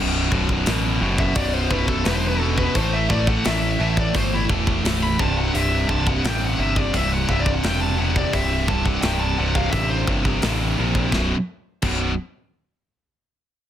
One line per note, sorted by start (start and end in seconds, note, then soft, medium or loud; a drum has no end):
0.00 0.27 B0 medium
0.00 0.30 B1 medium
0.00 0.30 F#2 medium
0.00 0.31 B2 medium
0.31 0.62 B0 medium
0.31 0.65 B1 medium
0.31 0.65 F#2 medium
0.31 0.66 B2 medium
0.31 kick medium
0.49 kick medium
0.66 0.97 A1 medium
0.66 0.99 B1 medium
0.66 1.00 F#2 medium
0.66 1.00 B2 medium
0.66 snare loud
0.66 open hi-hat medium
1.01 1.31 F#1 medium
1.01 1.34 B1 medium
1.01 1.35 F#2 loud
1.01 1.36 B2 medium
1.18 1.36 E5 medium
1.18 kick medium
1.35 1.67 B0 medium
1.35 1.69 B1 medium
1.35 1.70 F#2 medium
1.35 1.70 B2 medium
1.35 1.53 D5 medium
1.35 kick loud
1.35 open hi-hat soft
1.53 1.70 C5 medium
1.70 2.01 B0 medium
1.70 2.04 B1 medium
1.70 2.05 F#2 medium
1.70 2.05 B2 loud
1.70 1.87 B4 medium
1.70 kick medium
1.87 2.04 A4 medium
1.87 kick medium
2.05 2.67 E1 medium
2.05 2.40 B1 medium
2.05 2.40 F#2 medium
2.05 2.40 B2 medium
2.05 2.16 B4 medium
2.05 snare loud
2.05 open hi-hat medium
2.16 2.27 C5 medium
2.27 2.39 B4 medium
2.39 2.73 B1 medium
2.39 2.73 F#2 medium
2.39 2.73 B2 medium
2.39 2.56 A4 medium
2.57 2.74 B4 medium
2.57 kick medium
2.75 3.37 A1 medium
2.75 3.08 A2 medium
2.75 3.10 E3 medium
2.75 3.09 A3 loud
2.75 2.92 C5 medium
2.75 kick loud
2.75 open hi-hat soft
2.93 3.09 E5 medium
3.09 3.43 A2 medium
3.09 3.44 E3 medium
3.09 3.44 A3 medium
3.09 3.27 D5 loud
3.09 kick medium
3.27 3.44 F#5 loud
3.27 kick medium
3.44 3.76 A1 medium
3.44 3.78 A2 medium
3.44 3.79 E3 medium
3.44 3.79 A3 medium
3.44 3.94 E5 medium
3.44 snare loud
3.44 open hi-hat medium
3.79 4.10 A1 medium
3.79 4.13 A2 medium
3.79 4.15 E3 medium
3.79 4.14 A3 medium
3.97 4.16 D5 medium
3.97 kick medium
4.14 4.45 G1 loud
4.14 4.47 A2 medium
4.14 4.49 E3 medium
4.14 4.49 A3 medium
4.14 4.32 C5 medium
4.14 kick loud
4.14 open hi-hat soft
4.34 4.44 E4 medium
4.49 4.80 E1 medium
4.49 4.82 A2 medium
4.49 4.84 E3 medium
4.49 4.83 A3 medium
4.49 kick medium
4.67 kick medium
4.83 5.15 B0 medium
4.83 5.16 A2 medium
4.83 5.19 E3 medium
4.83 5.17 A3 medium
4.83 snare loud
4.83 open hi-hat medium
5.03 5.19 B5 medium
5.18 5.50 C1 medium
5.18 5.53 C2 medium
5.18 5.53 G2 loud
5.18 5.54 C3 loud
5.18 5.36 A5 medium
5.18 kick medium
5.38 5.54 F#5 medium
5.53 5.85 C1 medium
5.53 5.88 C2 medium
5.53 5.88 G2 loud
5.53 5.89 C3 loud
5.53 5.88 E5 medium
5.53 open hi-hat medium
5.88 6.20 C1 medium
5.88 6.24 C2 medium
5.88 6.23 G2 medium
5.88 6.25 C3 medium
5.88 6.05 A5 loud
5.88 kick medium
6.07 6.25 F#5 medium
6.07 kick medium
6.24 6.54 A1 medium
6.24 6.58 C2 medium
6.24 6.58 G2 medium
6.24 6.58 C3 medium
6.24 6.41 G5 loud
6.24 snare loud
6.24 open hi-hat medium
6.45 6.60 F#5 medium
6.58 6.89 G1 medium
6.58 6.92 C2 medium
6.58 6.93 G2 medium
6.58 6.93 C3 medium
6.58 6.79 E5 medium
6.76 6.95 D5 medium
6.76 kick medium
6.94 7.24 C1 loud
6.94 7.27 C2 medium
6.94 7.28 G2 medium
6.94 7.28 C3 medium
6.94 7.12 E5 medium
6.94 kick medium
6.94 open hi-hat medium
7.12 7.28 F#5 loud
7.28 7.59 C1 medium
7.28 7.62 C2 medium
7.28 7.63 G2 loud
7.28 7.63 C3 loud
7.28 7.40 E5 medium
7.28 kick medium
7.40 7.51 D5 medium
7.46 kick medium
7.54 7.64 F#5 medium
7.63 8.25 E1 medium
7.63 7.95 C2 medium
7.63 7.96 G2 medium
7.63 7.97 C3 medium
7.63 7.81 G5 medium
7.63 snare medium
7.63 open hi-hat soft
7.81 7.98 A5 loud
7.97 8.31 C2 medium
7.97 8.32 G2 medium
7.97 8.32 C3 medium
7.97 8.15 F#5 medium
8.16 8.33 D5 medium
8.16 kick medium
8.32 8.95 C1 medium
8.32 8.66 C2 medium
8.32 8.66 G2 medium
8.32 8.67 C3 medium
8.32 8.67 E5 medium
8.32 kick medium
8.32 open hi-hat soft
8.67 9.02 C2 medium
8.67 9.02 G2 medium
8.67 9.03 C3 medium
8.67 8.85 A5 medium
8.67 kick medium
8.85 9.02 F#5 medium
8.85 kick medium
9.02 9.34 C1 medium
9.02 9.37 C2 medium
9.02 9.37 G2 medium
9.02 9.38 C3 medium
9.02 9.19 G5 medium
9.02 snare loud
9.02 open hi-hat medium
9.20 9.37 A5 medium
9.38 9.69 C1 medium
9.38 9.71 C2 medium
9.38 9.72 G2 medium
9.38 9.72 C3 loud
9.38 9.55 F#5 medium
9.55 9.70 F5 medium
9.55 kick medium
9.70 10.04 A1 medium
9.70 10.06 C2 medium
9.70 10.07 G2 medium
9.70 10.07 C3 medium
9.70 9.89 E5 medium
9.70 kick medium
9.70 open hi-hat soft
9.89 10.00 C5 medium
10.07 10.39 G1 medium
10.07 10.42 C2 medium
10.07 10.42 G2 medium
10.07 10.42 C3 medium
10.07 kick medium
10.25 kick medium
10.42 10.74 A1 medium
10.42 10.76 C2 medium
10.42 10.77 G2 medium
10.42 10.77 C3 medium
10.42 snare loud
10.42 open hi-hat medium
10.77 11.09 A#1 medium
10.77 11.10 C2 medium
10.77 11.11 G2 medium
10.77 11.11 C3 medium
10.95 kick medium
11.12 11.32 B0 medium
11.12 11.34 B1 medium
11.12 11.34 F#2 medium
11.12 11.34 B2 medium
11.12 kick medium
11.12 snare medium
11.82 12.15 B0 medium
11.82 12.11 B1 medium
11.82 12.11 F#2 medium
11.82 12.11 B2 medium
11.82 kick loud
11.82 crash medium